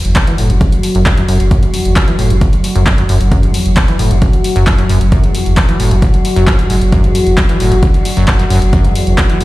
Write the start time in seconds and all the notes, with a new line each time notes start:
Already playing: E2 F#3 F#4
0.05 F#1, closed hi-hat
0.16 F#2, kick, clap, closed hi-hat
0.27 F#1 E3, closed hi-hat
0.38 F#1 A2, open hi-hat
0.50 F#1 F#2, closed hi-hat
0.61 F#1, kick, closed hi-hat
0.72 F#1, closed hi-hat
0.83 open hi-hat
0.95 F#1 F#2, closed hi-hat
1.06 A2, kick, clap
1.17 F#1 F#2, closed hi-hat
1.28 F#1 F#2, open hi-hat
1.40 F#1, closed hi-hat
1.51 F#2, kick, closed hi-hat
1.63 F#1 G#2, closed hi-hat
1.74 E2, open hi-hat
1.85 F#1, closed hi-hat
1.96 F#2, kick, clap, closed hi-hat
2.08 F#1 E3, closed hi-hat
2.19 F#1 A2, open hi-hat
2.30 F#1 F#2, closed hi-hat
2.41 F#1, kick, closed hi-hat
2.53 F#1, closed hi-hat
2.64 open hi-hat
2.75 F#1 F#2, closed hi-hat
2.86 A2, kick, clap
2.98 F#1 F#2, closed hi-hat
3.09 F#1 F#2, open hi-hat
3.21 F#1, closed hi-hat
3.32 F#2, kick, closed hi-hat
3.43 F#1 G#2, closed hi-hat
3.54 E2, open hi-hat
3.66 F#1, closed hi-hat
3.77 F#2, kick, clap, closed hi-hat
3.88 F#1 E3, closed hi-hat
3.99 F#1 A2, open hi-hat
4.11 F#1 F#2, closed hi-hat
4.22 F#1, kick, closed hi-hat
4.33 F#1, closed hi-hat
4.44 open hi-hat
4.56 F#1 F#2, closed hi-hat
4.67 A2, kick, clap
4.78 F#1 F#2, closed hi-hat
4.89 F#1 F#2, open hi-hat
5.01 F#1, closed hi-hat
5.12 F#2, kick, closed hi-hat
5.24 F#1 G#2, closed hi-hat
5.35 E2, open hi-hat
5.46 F#1, closed hi-hat
5.57 F#2, kick, clap, closed hi-hat
5.69 F#1 E3, closed hi-hat
5.80 F#1 A2, open hi-hat
5.91 F#1 F#2, closed hi-hat
6.02 F#1, kick, closed hi-hat
6.14 F#1, closed hi-hat
6.25 open hi-hat
6.36 F#1 F#2, closed hi-hat
6.47 F#3, kick, clap
6.59 F#1 F#2, closed hi-hat
6.70 F#1 G#2, open hi-hat
6.81 F#1, closed hi-hat
6.92 F#2, kick, closed hi-hat
7.04 F#1 G#2, closed hi-hat
7.15 E2, open hi-hat
7.27 F#1, closed hi-hat
7.38 F#2, kick, clap, closed hi-hat
7.49 F#1 E3, closed hi-hat
7.60 F#1 A2, open hi-hat
7.72 F#1 F#2, closed hi-hat
7.83 F#1, kick, closed hi-hat
7.94 F#1, closed hi-hat
8.05 open hi-hat
8.17 F#1 F#2, closed hi-hat
8.28 A2, kick, clap
8.39 F#1 F#2, closed hi-hat
8.50 F#1 F#2, open hi-hat
8.62 F#1, closed hi-hat
8.73 F#2, kick, closed hi-hat
8.84 F#1 G#2, closed hi-hat
8.95 E2, open hi-hat
9.07 F#1, closed hi-hat
9.18 F#2, kick, clap, closed hi-hat
9.30 F#1 E3, closed hi-hat
9.41 F#1 A2, open hi-hat